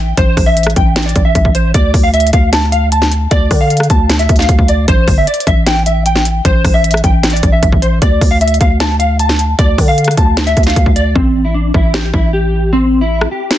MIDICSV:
0, 0, Header, 1, 4, 480
1, 0, Start_track
1, 0, Tempo, 392157
1, 214, Time_signature, 4, 2, 24, 8
1, 16622, End_track
2, 0, Start_track
2, 0, Title_t, "Clean electric guitar"
2, 0, Program_c, 0, 27
2, 0, Note_on_c, 0, 79, 76
2, 187, Note_off_c, 0, 79, 0
2, 219, Note_on_c, 0, 72, 114
2, 555, Note_off_c, 0, 72, 0
2, 567, Note_on_c, 0, 76, 88
2, 909, Note_off_c, 0, 76, 0
2, 936, Note_on_c, 0, 79, 73
2, 1274, Note_off_c, 0, 79, 0
2, 1294, Note_on_c, 0, 74, 75
2, 1496, Note_off_c, 0, 74, 0
2, 1529, Note_on_c, 0, 76, 75
2, 1870, Note_off_c, 0, 76, 0
2, 1896, Note_on_c, 0, 72, 90
2, 2096, Note_off_c, 0, 72, 0
2, 2135, Note_on_c, 0, 74, 113
2, 2473, Note_off_c, 0, 74, 0
2, 2490, Note_on_c, 0, 77, 80
2, 2593, Note_off_c, 0, 77, 0
2, 2615, Note_on_c, 0, 76, 87
2, 2816, Note_off_c, 0, 76, 0
2, 2857, Note_on_c, 0, 77, 73
2, 3057, Note_off_c, 0, 77, 0
2, 3096, Note_on_c, 0, 81, 94
2, 3297, Note_off_c, 0, 81, 0
2, 3330, Note_on_c, 0, 77, 84
2, 3533, Note_off_c, 0, 77, 0
2, 3577, Note_on_c, 0, 81, 82
2, 4027, Note_off_c, 0, 81, 0
2, 4056, Note_on_c, 0, 74, 127
2, 4394, Note_off_c, 0, 74, 0
2, 4414, Note_on_c, 0, 77, 82
2, 4753, Note_off_c, 0, 77, 0
2, 4774, Note_on_c, 0, 81, 70
2, 5113, Note_off_c, 0, 81, 0
2, 5133, Note_on_c, 0, 76, 79
2, 5335, Note_off_c, 0, 76, 0
2, 5374, Note_on_c, 0, 77, 78
2, 5713, Note_off_c, 0, 77, 0
2, 5738, Note_on_c, 0, 74, 85
2, 5938, Note_off_c, 0, 74, 0
2, 5975, Note_on_c, 0, 72, 112
2, 6313, Note_off_c, 0, 72, 0
2, 6338, Note_on_c, 0, 76, 77
2, 6437, Note_off_c, 0, 76, 0
2, 6455, Note_on_c, 0, 74, 84
2, 6656, Note_off_c, 0, 74, 0
2, 6700, Note_on_c, 0, 76, 79
2, 6899, Note_off_c, 0, 76, 0
2, 6935, Note_on_c, 0, 79, 94
2, 7136, Note_off_c, 0, 79, 0
2, 7176, Note_on_c, 0, 76, 83
2, 7377, Note_off_c, 0, 76, 0
2, 7419, Note_on_c, 0, 79, 76
2, 7868, Note_off_c, 0, 79, 0
2, 7899, Note_on_c, 0, 72, 117
2, 8235, Note_off_c, 0, 72, 0
2, 8250, Note_on_c, 0, 76, 87
2, 8590, Note_off_c, 0, 76, 0
2, 8615, Note_on_c, 0, 79, 69
2, 8953, Note_off_c, 0, 79, 0
2, 8974, Note_on_c, 0, 74, 75
2, 9175, Note_off_c, 0, 74, 0
2, 9209, Note_on_c, 0, 76, 74
2, 9550, Note_off_c, 0, 76, 0
2, 9573, Note_on_c, 0, 72, 93
2, 9775, Note_off_c, 0, 72, 0
2, 9814, Note_on_c, 0, 74, 113
2, 10152, Note_off_c, 0, 74, 0
2, 10170, Note_on_c, 0, 77, 79
2, 10272, Note_off_c, 0, 77, 0
2, 10295, Note_on_c, 0, 76, 86
2, 10496, Note_off_c, 0, 76, 0
2, 10534, Note_on_c, 0, 77, 73
2, 10736, Note_off_c, 0, 77, 0
2, 10774, Note_on_c, 0, 81, 98
2, 10976, Note_off_c, 0, 81, 0
2, 11009, Note_on_c, 0, 77, 84
2, 11212, Note_off_c, 0, 77, 0
2, 11256, Note_on_c, 0, 81, 80
2, 11707, Note_off_c, 0, 81, 0
2, 11735, Note_on_c, 0, 74, 127
2, 12073, Note_off_c, 0, 74, 0
2, 12093, Note_on_c, 0, 77, 83
2, 12432, Note_off_c, 0, 77, 0
2, 12455, Note_on_c, 0, 81, 71
2, 12793, Note_off_c, 0, 81, 0
2, 12812, Note_on_c, 0, 76, 80
2, 13014, Note_off_c, 0, 76, 0
2, 13053, Note_on_c, 0, 77, 75
2, 13392, Note_off_c, 0, 77, 0
2, 13414, Note_on_c, 0, 74, 84
2, 13615, Note_off_c, 0, 74, 0
2, 13651, Note_on_c, 0, 60, 108
2, 13991, Note_off_c, 0, 60, 0
2, 14011, Note_on_c, 0, 64, 74
2, 14113, Note_off_c, 0, 64, 0
2, 14129, Note_on_c, 0, 62, 82
2, 14333, Note_off_c, 0, 62, 0
2, 14376, Note_on_c, 0, 64, 75
2, 14576, Note_off_c, 0, 64, 0
2, 14608, Note_on_c, 0, 67, 92
2, 14812, Note_off_c, 0, 67, 0
2, 14852, Note_on_c, 0, 64, 80
2, 15054, Note_off_c, 0, 64, 0
2, 15094, Note_on_c, 0, 67, 77
2, 15545, Note_off_c, 0, 67, 0
2, 15577, Note_on_c, 0, 60, 109
2, 15914, Note_off_c, 0, 60, 0
2, 15927, Note_on_c, 0, 64, 86
2, 16269, Note_off_c, 0, 64, 0
2, 16296, Note_on_c, 0, 67, 68
2, 16622, Note_off_c, 0, 67, 0
2, 16622, End_track
3, 0, Start_track
3, 0, Title_t, "808-style bass"
3, 0, Program_c, 1, 38
3, 0, Note_on_c, 1, 33, 110
3, 166, Note_off_c, 1, 33, 0
3, 214, Note_on_c, 1, 33, 114
3, 445, Note_off_c, 1, 33, 0
3, 454, Note_on_c, 1, 33, 106
3, 915, Note_off_c, 1, 33, 0
3, 935, Note_on_c, 1, 33, 108
3, 1396, Note_off_c, 1, 33, 0
3, 1416, Note_on_c, 1, 33, 103
3, 1646, Note_off_c, 1, 33, 0
3, 1655, Note_on_c, 1, 33, 114
3, 2116, Note_off_c, 1, 33, 0
3, 2135, Note_on_c, 1, 38, 114
3, 2365, Note_off_c, 1, 38, 0
3, 2374, Note_on_c, 1, 38, 103
3, 2835, Note_off_c, 1, 38, 0
3, 2854, Note_on_c, 1, 38, 102
3, 4006, Note_off_c, 1, 38, 0
3, 4054, Note_on_c, 1, 38, 113
3, 4285, Note_off_c, 1, 38, 0
3, 4294, Note_on_c, 1, 50, 100
3, 4755, Note_off_c, 1, 50, 0
3, 4774, Note_on_c, 1, 38, 108
3, 5235, Note_off_c, 1, 38, 0
3, 5254, Note_on_c, 1, 38, 107
3, 5485, Note_off_c, 1, 38, 0
3, 5493, Note_on_c, 1, 38, 110
3, 5955, Note_off_c, 1, 38, 0
3, 5974, Note_on_c, 1, 33, 117
3, 6205, Note_off_c, 1, 33, 0
3, 6213, Note_on_c, 1, 31, 102
3, 6444, Note_off_c, 1, 31, 0
3, 6694, Note_on_c, 1, 33, 106
3, 7846, Note_off_c, 1, 33, 0
3, 7894, Note_on_c, 1, 33, 114
3, 8125, Note_off_c, 1, 33, 0
3, 8134, Note_on_c, 1, 33, 107
3, 8595, Note_off_c, 1, 33, 0
3, 8615, Note_on_c, 1, 33, 105
3, 9076, Note_off_c, 1, 33, 0
3, 9096, Note_on_c, 1, 33, 108
3, 9326, Note_off_c, 1, 33, 0
3, 9335, Note_on_c, 1, 33, 112
3, 9795, Note_off_c, 1, 33, 0
3, 9815, Note_on_c, 1, 38, 111
3, 10045, Note_off_c, 1, 38, 0
3, 10054, Note_on_c, 1, 38, 103
3, 10515, Note_off_c, 1, 38, 0
3, 10535, Note_on_c, 1, 38, 105
3, 11687, Note_off_c, 1, 38, 0
3, 11735, Note_on_c, 1, 38, 115
3, 11965, Note_off_c, 1, 38, 0
3, 11975, Note_on_c, 1, 50, 105
3, 12435, Note_off_c, 1, 50, 0
3, 12454, Note_on_c, 1, 38, 106
3, 12915, Note_off_c, 1, 38, 0
3, 12936, Note_on_c, 1, 38, 107
3, 13165, Note_off_c, 1, 38, 0
3, 13175, Note_on_c, 1, 38, 110
3, 13635, Note_off_c, 1, 38, 0
3, 13654, Note_on_c, 1, 33, 109
3, 14346, Note_off_c, 1, 33, 0
3, 14374, Note_on_c, 1, 33, 106
3, 14835, Note_off_c, 1, 33, 0
3, 14855, Note_on_c, 1, 33, 106
3, 16246, Note_off_c, 1, 33, 0
3, 16622, End_track
4, 0, Start_track
4, 0, Title_t, "Drums"
4, 214, Note_on_c, 9, 36, 118
4, 214, Note_on_c, 9, 42, 92
4, 336, Note_off_c, 9, 42, 0
4, 337, Note_off_c, 9, 36, 0
4, 454, Note_on_c, 9, 36, 102
4, 454, Note_on_c, 9, 37, 65
4, 454, Note_on_c, 9, 46, 83
4, 576, Note_off_c, 9, 36, 0
4, 577, Note_off_c, 9, 37, 0
4, 577, Note_off_c, 9, 46, 0
4, 695, Note_on_c, 9, 42, 81
4, 775, Note_off_c, 9, 42, 0
4, 775, Note_on_c, 9, 42, 63
4, 814, Note_on_c, 9, 37, 100
4, 855, Note_off_c, 9, 42, 0
4, 855, Note_on_c, 9, 42, 45
4, 934, Note_off_c, 9, 42, 0
4, 934, Note_on_c, 9, 42, 75
4, 935, Note_on_c, 9, 36, 97
4, 937, Note_off_c, 9, 37, 0
4, 1056, Note_off_c, 9, 42, 0
4, 1057, Note_off_c, 9, 36, 0
4, 1174, Note_on_c, 9, 38, 120
4, 1175, Note_on_c, 9, 42, 54
4, 1255, Note_off_c, 9, 42, 0
4, 1255, Note_on_c, 9, 42, 54
4, 1297, Note_off_c, 9, 38, 0
4, 1335, Note_off_c, 9, 42, 0
4, 1335, Note_on_c, 9, 42, 55
4, 1415, Note_off_c, 9, 42, 0
4, 1415, Note_on_c, 9, 42, 65
4, 1416, Note_on_c, 9, 36, 99
4, 1537, Note_off_c, 9, 42, 0
4, 1538, Note_off_c, 9, 36, 0
4, 1655, Note_on_c, 9, 36, 98
4, 1655, Note_on_c, 9, 42, 81
4, 1775, Note_off_c, 9, 36, 0
4, 1775, Note_on_c, 9, 36, 100
4, 1777, Note_off_c, 9, 42, 0
4, 1895, Note_on_c, 9, 42, 76
4, 1897, Note_off_c, 9, 36, 0
4, 2017, Note_off_c, 9, 42, 0
4, 2134, Note_on_c, 9, 42, 92
4, 2135, Note_on_c, 9, 36, 118
4, 2257, Note_off_c, 9, 36, 0
4, 2257, Note_off_c, 9, 42, 0
4, 2374, Note_on_c, 9, 36, 106
4, 2375, Note_on_c, 9, 46, 81
4, 2497, Note_off_c, 9, 36, 0
4, 2497, Note_off_c, 9, 46, 0
4, 2615, Note_on_c, 9, 42, 66
4, 2695, Note_off_c, 9, 42, 0
4, 2695, Note_on_c, 9, 42, 64
4, 2775, Note_off_c, 9, 42, 0
4, 2775, Note_on_c, 9, 42, 66
4, 2853, Note_off_c, 9, 42, 0
4, 2853, Note_on_c, 9, 42, 75
4, 2854, Note_on_c, 9, 36, 99
4, 2976, Note_off_c, 9, 42, 0
4, 2977, Note_off_c, 9, 36, 0
4, 3093, Note_on_c, 9, 38, 121
4, 3094, Note_on_c, 9, 42, 62
4, 3215, Note_off_c, 9, 38, 0
4, 3216, Note_off_c, 9, 42, 0
4, 3334, Note_on_c, 9, 42, 74
4, 3456, Note_off_c, 9, 42, 0
4, 3573, Note_on_c, 9, 42, 81
4, 3694, Note_on_c, 9, 38, 77
4, 3696, Note_off_c, 9, 42, 0
4, 3814, Note_on_c, 9, 42, 71
4, 3816, Note_off_c, 9, 38, 0
4, 3936, Note_off_c, 9, 42, 0
4, 4054, Note_on_c, 9, 36, 115
4, 4054, Note_on_c, 9, 42, 87
4, 4176, Note_off_c, 9, 42, 0
4, 4177, Note_off_c, 9, 36, 0
4, 4293, Note_on_c, 9, 36, 103
4, 4293, Note_on_c, 9, 46, 84
4, 4294, Note_on_c, 9, 37, 64
4, 4416, Note_off_c, 9, 36, 0
4, 4416, Note_off_c, 9, 37, 0
4, 4416, Note_off_c, 9, 46, 0
4, 4534, Note_on_c, 9, 42, 62
4, 4613, Note_off_c, 9, 42, 0
4, 4613, Note_on_c, 9, 42, 63
4, 4653, Note_on_c, 9, 37, 105
4, 4693, Note_off_c, 9, 42, 0
4, 4693, Note_on_c, 9, 42, 66
4, 4773, Note_off_c, 9, 42, 0
4, 4773, Note_on_c, 9, 42, 73
4, 4774, Note_on_c, 9, 36, 98
4, 4775, Note_off_c, 9, 37, 0
4, 4895, Note_off_c, 9, 42, 0
4, 4896, Note_off_c, 9, 36, 0
4, 5013, Note_on_c, 9, 38, 119
4, 5013, Note_on_c, 9, 42, 39
4, 5133, Note_off_c, 9, 42, 0
4, 5133, Note_on_c, 9, 42, 66
4, 5135, Note_off_c, 9, 38, 0
4, 5253, Note_off_c, 9, 42, 0
4, 5253, Note_on_c, 9, 42, 58
4, 5255, Note_on_c, 9, 36, 102
4, 5334, Note_off_c, 9, 42, 0
4, 5334, Note_on_c, 9, 42, 57
4, 5373, Note_on_c, 9, 38, 73
4, 5377, Note_off_c, 9, 36, 0
4, 5413, Note_off_c, 9, 42, 0
4, 5413, Note_on_c, 9, 42, 59
4, 5493, Note_off_c, 9, 42, 0
4, 5493, Note_on_c, 9, 42, 80
4, 5494, Note_on_c, 9, 36, 96
4, 5495, Note_off_c, 9, 38, 0
4, 5614, Note_off_c, 9, 36, 0
4, 5614, Note_on_c, 9, 36, 100
4, 5616, Note_off_c, 9, 42, 0
4, 5734, Note_on_c, 9, 42, 77
4, 5736, Note_off_c, 9, 36, 0
4, 5856, Note_off_c, 9, 42, 0
4, 5974, Note_on_c, 9, 36, 113
4, 5974, Note_on_c, 9, 42, 90
4, 6096, Note_off_c, 9, 36, 0
4, 6096, Note_off_c, 9, 42, 0
4, 6213, Note_on_c, 9, 36, 103
4, 6213, Note_on_c, 9, 46, 78
4, 6336, Note_off_c, 9, 36, 0
4, 6336, Note_off_c, 9, 46, 0
4, 6454, Note_on_c, 9, 42, 66
4, 6534, Note_off_c, 9, 42, 0
4, 6534, Note_on_c, 9, 42, 64
4, 6615, Note_off_c, 9, 42, 0
4, 6615, Note_on_c, 9, 42, 65
4, 6694, Note_on_c, 9, 36, 104
4, 6695, Note_off_c, 9, 42, 0
4, 6695, Note_on_c, 9, 42, 74
4, 6817, Note_off_c, 9, 36, 0
4, 6817, Note_off_c, 9, 42, 0
4, 6934, Note_on_c, 9, 38, 116
4, 6935, Note_on_c, 9, 42, 64
4, 7057, Note_off_c, 9, 38, 0
4, 7057, Note_off_c, 9, 42, 0
4, 7174, Note_on_c, 9, 42, 74
4, 7297, Note_off_c, 9, 42, 0
4, 7414, Note_on_c, 9, 42, 81
4, 7535, Note_on_c, 9, 38, 74
4, 7537, Note_off_c, 9, 42, 0
4, 7655, Note_on_c, 9, 42, 70
4, 7657, Note_off_c, 9, 38, 0
4, 7777, Note_off_c, 9, 42, 0
4, 7895, Note_on_c, 9, 36, 116
4, 7895, Note_on_c, 9, 42, 88
4, 8017, Note_off_c, 9, 36, 0
4, 8017, Note_off_c, 9, 42, 0
4, 8134, Note_on_c, 9, 36, 104
4, 8135, Note_on_c, 9, 37, 65
4, 8135, Note_on_c, 9, 46, 81
4, 8256, Note_off_c, 9, 36, 0
4, 8258, Note_off_c, 9, 37, 0
4, 8258, Note_off_c, 9, 46, 0
4, 8376, Note_on_c, 9, 42, 80
4, 8455, Note_off_c, 9, 42, 0
4, 8455, Note_on_c, 9, 42, 61
4, 8494, Note_on_c, 9, 37, 102
4, 8535, Note_off_c, 9, 42, 0
4, 8535, Note_on_c, 9, 42, 46
4, 8615, Note_off_c, 9, 42, 0
4, 8615, Note_on_c, 9, 36, 97
4, 8615, Note_on_c, 9, 42, 75
4, 8617, Note_off_c, 9, 37, 0
4, 8737, Note_off_c, 9, 36, 0
4, 8737, Note_off_c, 9, 42, 0
4, 8855, Note_on_c, 9, 38, 117
4, 8855, Note_on_c, 9, 42, 56
4, 8935, Note_off_c, 9, 42, 0
4, 8935, Note_on_c, 9, 42, 55
4, 8977, Note_off_c, 9, 38, 0
4, 9015, Note_off_c, 9, 42, 0
4, 9015, Note_on_c, 9, 42, 54
4, 9095, Note_off_c, 9, 42, 0
4, 9095, Note_on_c, 9, 42, 68
4, 9096, Note_on_c, 9, 36, 102
4, 9218, Note_off_c, 9, 36, 0
4, 9218, Note_off_c, 9, 42, 0
4, 9335, Note_on_c, 9, 36, 102
4, 9335, Note_on_c, 9, 42, 83
4, 9455, Note_off_c, 9, 36, 0
4, 9455, Note_on_c, 9, 36, 100
4, 9458, Note_off_c, 9, 42, 0
4, 9575, Note_on_c, 9, 42, 76
4, 9577, Note_off_c, 9, 36, 0
4, 9698, Note_off_c, 9, 42, 0
4, 9815, Note_on_c, 9, 36, 116
4, 9815, Note_on_c, 9, 42, 88
4, 9937, Note_off_c, 9, 36, 0
4, 9937, Note_off_c, 9, 42, 0
4, 10054, Note_on_c, 9, 36, 104
4, 10055, Note_on_c, 9, 46, 80
4, 10177, Note_off_c, 9, 36, 0
4, 10178, Note_off_c, 9, 46, 0
4, 10295, Note_on_c, 9, 42, 65
4, 10374, Note_off_c, 9, 42, 0
4, 10374, Note_on_c, 9, 42, 63
4, 10455, Note_off_c, 9, 42, 0
4, 10455, Note_on_c, 9, 42, 66
4, 10535, Note_off_c, 9, 42, 0
4, 10535, Note_on_c, 9, 36, 99
4, 10535, Note_on_c, 9, 42, 72
4, 10657, Note_off_c, 9, 36, 0
4, 10657, Note_off_c, 9, 42, 0
4, 10774, Note_on_c, 9, 38, 118
4, 10775, Note_on_c, 9, 42, 65
4, 10896, Note_off_c, 9, 38, 0
4, 10897, Note_off_c, 9, 42, 0
4, 11014, Note_on_c, 9, 42, 76
4, 11137, Note_off_c, 9, 42, 0
4, 11254, Note_on_c, 9, 42, 84
4, 11375, Note_on_c, 9, 38, 80
4, 11377, Note_off_c, 9, 42, 0
4, 11495, Note_on_c, 9, 42, 71
4, 11497, Note_off_c, 9, 38, 0
4, 11618, Note_off_c, 9, 42, 0
4, 11735, Note_on_c, 9, 36, 119
4, 11735, Note_on_c, 9, 42, 89
4, 11857, Note_off_c, 9, 36, 0
4, 11858, Note_off_c, 9, 42, 0
4, 11974, Note_on_c, 9, 36, 106
4, 11976, Note_on_c, 9, 37, 63
4, 11976, Note_on_c, 9, 46, 81
4, 12097, Note_off_c, 9, 36, 0
4, 12098, Note_off_c, 9, 37, 0
4, 12098, Note_off_c, 9, 46, 0
4, 12215, Note_on_c, 9, 42, 66
4, 12295, Note_off_c, 9, 42, 0
4, 12295, Note_on_c, 9, 42, 68
4, 12334, Note_on_c, 9, 37, 103
4, 12375, Note_off_c, 9, 42, 0
4, 12375, Note_on_c, 9, 42, 68
4, 12454, Note_off_c, 9, 42, 0
4, 12454, Note_on_c, 9, 36, 100
4, 12454, Note_on_c, 9, 42, 74
4, 12457, Note_off_c, 9, 37, 0
4, 12576, Note_off_c, 9, 42, 0
4, 12577, Note_off_c, 9, 36, 0
4, 12693, Note_on_c, 9, 38, 119
4, 12694, Note_on_c, 9, 42, 39
4, 12814, Note_off_c, 9, 42, 0
4, 12814, Note_on_c, 9, 42, 68
4, 12816, Note_off_c, 9, 38, 0
4, 12935, Note_off_c, 9, 42, 0
4, 12935, Note_on_c, 9, 36, 98
4, 12935, Note_on_c, 9, 42, 56
4, 13015, Note_off_c, 9, 42, 0
4, 13015, Note_on_c, 9, 42, 57
4, 13056, Note_on_c, 9, 38, 72
4, 13058, Note_off_c, 9, 36, 0
4, 13095, Note_off_c, 9, 42, 0
4, 13095, Note_on_c, 9, 42, 60
4, 13175, Note_off_c, 9, 42, 0
4, 13175, Note_on_c, 9, 36, 103
4, 13175, Note_on_c, 9, 42, 79
4, 13178, Note_off_c, 9, 38, 0
4, 13295, Note_off_c, 9, 36, 0
4, 13295, Note_on_c, 9, 36, 99
4, 13297, Note_off_c, 9, 42, 0
4, 13415, Note_on_c, 9, 42, 74
4, 13417, Note_off_c, 9, 36, 0
4, 13538, Note_off_c, 9, 42, 0
4, 13655, Note_on_c, 9, 36, 118
4, 13777, Note_off_c, 9, 36, 0
4, 14374, Note_on_c, 9, 36, 97
4, 14497, Note_off_c, 9, 36, 0
4, 14614, Note_on_c, 9, 38, 118
4, 14736, Note_off_c, 9, 38, 0
4, 14855, Note_on_c, 9, 36, 95
4, 14977, Note_off_c, 9, 36, 0
4, 16174, Note_on_c, 9, 37, 102
4, 16296, Note_off_c, 9, 37, 0
4, 16532, Note_on_c, 9, 38, 117
4, 16622, Note_off_c, 9, 38, 0
4, 16622, End_track
0, 0, End_of_file